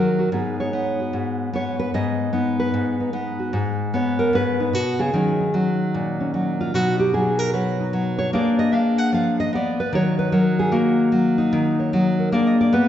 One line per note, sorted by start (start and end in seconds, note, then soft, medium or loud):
0.00 0.31 D#3 medium
0.00 0.33 F#3 medium
0.00 0.60 A#4 medium
0.19 0.33 F#4 soft
0.32 1.13 G#2 medium
0.32 0.73 B3 medium
0.32 0.74 D#4 medium
0.32 0.60 G#4 soft
0.60 0.99 C#5 medium
0.73 1.53 B3 medium
0.73 2.33 D#4 soft
1.00 1.97 F#4 soft
1.13 1.94 G#2 medium
1.53 2.32 B3 medium
1.53 1.79 C#5 medium
1.79 1.93 B4 medium
1.94 2.73 G#2 medium
1.94 2.59 D#5 medium
2.33 3.12 B3 medium
2.33 3.00 D#4 medium
2.60 2.99 B4 medium
2.74 3.52 G#2 medium
3.00 3.98 D#4 medium
3.13 3.51 B3 medium
3.39 3.56 F#4 soft
3.53 4.32 G#2 medium
3.94 5.12 B3 medium
3.94 4.19 C#5 medium
4.19 4.33 A#4 medium
4.33 4.73 G#2 medium
4.33 4.60 B4 loud
4.60 4.75 D#4 medium
4.73 4.99 B2 medium
4.73 4.99 F#4 medium
4.99 5.13 C#3 medium
4.99 5.53 G#4 medium
5.14 6.72 D#3 medium
5.14 5.53 F#3 medium
5.14 5.53 C#4 medium
5.14 5.40 D#4 medium
5.40 6.59 D#4 soft
5.54 6.33 F#3 medium
5.54 6.19 C#4 soft
5.94 6.72 A#2 medium
6.20 6.72 C#4 medium
6.34 6.73 F#3 medium
6.61 6.75 F4 medium
6.74 8.32 B2 medium
6.74 7.13 F#3 medium
6.74 7.79 D#4 medium
6.74 6.99 F#4 medium
6.99 7.13 G4 medium
7.14 7.52 F#3 medium
7.14 7.39 G#4 medium
7.39 7.53 A#4 loud
7.53 7.92 F#3 medium
7.53 8.18 B4 medium
7.80 8.32 D#4 medium
7.93 8.33 F#3 medium
8.19 8.33 C#5 loud
8.33 10.22 A#3 medium
8.33 8.72 D4 medium
8.33 9.92 G#4 medium
8.33 9.79 B4 medium
8.33 8.59 D5 medium
8.59 8.74 D#5 medium
8.73 9.52 D4 medium
8.73 8.98 F5 medium
8.98 9.13 F#5 loud
9.12 9.91 F3 medium
9.12 9.39 F5 medium
9.40 9.53 D#5 medium
9.53 9.78 B3 medium
9.53 9.80 D5 medium
9.80 9.93 B4 medium
9.93 11.51 D#3 medium
9.93 10.31 F#3 medium
9.93 10.71 F#4 medium
9.93 10.18 C#5 loud
10.19 10.34 B4 medium
10.32 11.11 F#3 medium
10.32 10.59 A#4 medium
10.59 10.73 G#4 medium
10.72 12.32 A#3 medium
10.72 11.38 F#4 medium
11.12 11.92 F#3 medium
11.38 11.78 D#4 medium
11.53 12.31 D#3 medium
11.79 12.31 C#5 medium
11.93 12.33 F#3 medium
11.93 12.31 F#4 medium
12.19 12.31 A#4 medium
12.32 12.88 A#3 medium
12.32 12.72 D4 medium
12.32 12.88 G#4 medium
12.32 12.48 D5 medium
12.48 12.60 D#5 loud
12.61 12.73 D5 medium
12.73 12.88 B3 medium
12.73 12.88 B4 medium